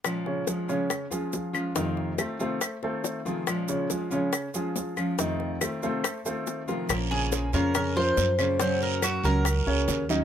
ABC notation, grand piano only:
X:1
M:4/4
L:1/8
Q:1/4=140
K:Bbm
V:1 name="Grand piano"
z [D,Dd] [F,FA] [D,Dd]2 [F,FA] [F,FA]2 | [E,Ee]2 [=A,=Ac] [A,Ac]2 [A,Ac]2 [F,F_A]- | [F,FA] [D,Dd] [F,FA] [D,Dd]2 [F,FA] [F,FA]2 | [E,Ee]2 [=A,=Ac] [A,Ac]2 [A,Ac]2 [F,FB] |
z [D,D]2 [D,Dd] [D,Dd] [F,FB]2 [D,Dd] | [D,Dd]2 [G,GB] [G,GB]2 [D,Dd]2 [E,Ee] |]